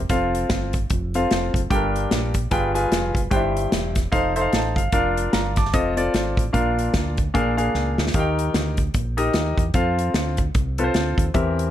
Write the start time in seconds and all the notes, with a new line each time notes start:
0.09 F1 C4 F4 A4 F5, kick, closed hi-hat
0.35 closed hi-hat
0.50 G1, kick, snare, closed hi-hat
0.73 kick, closed hi-hat
0.90 F1, kick, closed hi-hat
1.14 C4 F4 A4 F5, closed hi-hat
1.31 F1, snare, closed hi-hat
1.54 F#1, kick, closed hi-hat
1.70 G1 G2 D4 G4 A4 G5, kick, closed hi-hat
1.75 A#4
1.96 closed hi-hat
2.11 A#1, snare, closed hi-hat
2.34 kick, closed hi-hat
2.51 G1 G2 F4 G#4 B4 G5, kick, closed hi-hat
2.74 F4 G#4 B4 G#5, closed hi-hat
2.91 F1, snare, closed hi-hat
3.15 F#1, kick, closed hi-hat
3.31 G1 G2 D4 G4 C5 G5, kick, closed hi-hat
3.36 E4
3.57 closed hi-hat
3.72 E1, snare, closed hi-hat
3.95 kick, snare, closed hi-hat
4.12 F1 D#4 A4 C5 F5, kick, closed hi-hat
4.36 D#4 A4 C5 E5 C6, closed hi-hat
4.41 F5
4.53 A1 A5, snare, closed hi-hat
4.76 G1 F5, kick, closed hi-hat
4.92 F1 D4 F4 A#4 F5, kick, closed hi-hat
5.17 closed hi-hat
5.33 G1 F5 A#5, snare, closed hi-hat
5.56 A5 D6, kick, snare, closed hi-hat
5.65 snare
5.73 F1 C4 F4 A4 D#5, kick, closed hi-hat
5.97 C4 F4 A4 D5, closed hi-hat
6.14 G#1, snare, closed hi-hat
6.37 A1, kick, closed hi-hat
6.53 A#1 A#2 D4 F4 A#4 F5, kick, closed hi-hat
6.79 closed hi-hat
6.94 D2, kick, snare, closed hi-hat
7.17 kick, closed hi-hat
7.34 A#1 A#2 D4 G#4 A#4 F5, kick, closed hi-hat
7.57 D4 G#4 A#4 F5, closed hi-hat
7.74 C#2, snare
7.98 D2, snare
8.07 snare
8.14 D#2 D#3 D#4 G4 A#4 F5, kick, closed hi-hat
8.19 G5
8.39 closed hi-hat
8.54 D2, snare, closed hi-hat
8.77 kick, closed hi-hat
8.94 A#1, kick, closed hi-hat
9.17 D#4 G4 A#4 D#5, closed hi-hat
9.33 D#2, snare, closed hi-hat
9.58 E2, kick, closed hi-hat
9.74 F2 C4 F4 A4 F5, kick, closed hi-hat
9.99 closed hi-hat
10.14 D2, snare, closed hi-hat
10.37 kick, closed hi-hat
10.55 C2, kick, closed hi-hat
10.78 C4 F4 A4 B4, closed hi-hat
10.84 C5
10.94 D2, snare, closed hi-hat
11.18 D#2, kick, closed hi-hat
11.34 E2 E3 C4 G4 A#4 E5, kick, closed hi-hat
11.59 closed hi-hat